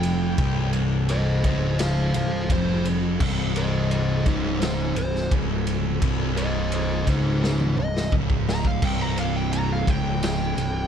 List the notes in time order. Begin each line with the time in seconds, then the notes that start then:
Already playing: F1 F2 C3 G3 C4 G5
0.03 ride
0.38 C1 C2, kick, ride
0.73 ride
1.09 C5 D#5, ride
1.44 C#1 C#2 C5 D#5, kick, ride
1.79 C5 F5, snare, ride
2.14 C1 C2 C5 F5, ride
2.49 F1 F2 C5, kick, ride
2.85 ride
3.20 C1 C2, kick, crash
3.56 C5 D#5, ride
3.91 C5 D#5, ride
4.26 C#1 C#2 D#4 C5, kick, ride
4.62 D#4 C5, snare, ride
4.96 C1 C2 C5, ride
5.15 snare
5.31 C#1 C#2, kick, ride
5.67 ride
6.02 C1 C2, kick, ride
6.37 C5 D#5, ride
6.72 C5 D#5, ride
7.07 C#1 C#2 D#4 C5, kick, ride
7.42 D#4 C5, snare
7.60 high tom
7.77 C1 C2 D#5, mid tom
7.97 snare
8.12 C#1 C#2, kick, mid tom
8.30 kick
8.49 A#5, snare
8.65 F5, kick
8.82 C1 C2 F3 G5, kick, crash
9.01 A#5
9.18 F5, ride
9.36 G5
9.53 A#5, ride
9.73 F5
9.87 C#1 C#2 G5, kick, ride
10.23 G5, snare, ride
10.57 C1 C2, ride